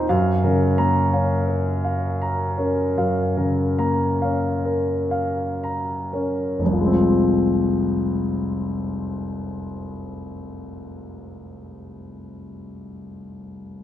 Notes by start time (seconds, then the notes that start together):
0.09 F#2 F5
0.43 C#3 A#4
0.78 A#3 A#5
1.13 C#4 F5
1.48 A#4
1.84 F5
2.22 A#5
2.58 C#4 A#4
2.97 F#2 F5
3.37 C#3 A#4
3.78 A#3 A#5
4.22 C#4 F5
4.65 A#4
5.11 F5
5.64 A#5
6.13 C#4 A#4
6.59 F1
6.65 C2
6.73 F3
6.80 G#3
6.86 C4
6.93 F4